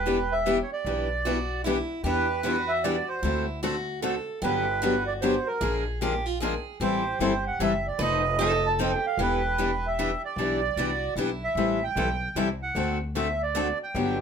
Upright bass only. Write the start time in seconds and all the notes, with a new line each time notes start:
Already playing: E1
0.85 B1
2.04 E2
3.23 D2
4.42 G1
5.61 A#1
6.80 A1
7.19 G1
7.59 F#1
7.99 F1
9.17 E1
10.36 B1
10.76 C2
11.16 B1
11.55 A1
11.95 B1
12.35 C2
12.75 D2
13.95 G1